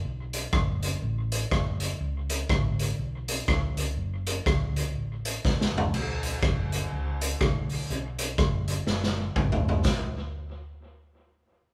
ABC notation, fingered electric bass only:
X:1
M:4/4
L:1/8
Q:"Swing" 1/4=122
K:C#phr
V:1 name="Fingered electric bass" clef=bass
B,,,2 F,,,2 A,,,2 F,,,2 | C,,2 G,,,2 B,,,2 C,, C,, | F,,,2 C,,2 A,,,2 B,,, F,,, | B,,,2 F,,,2 C,,2 B,,,2 |
B,,,2 F,,,2 F,,,2 G,,, F,,, | B,,, z6 z |]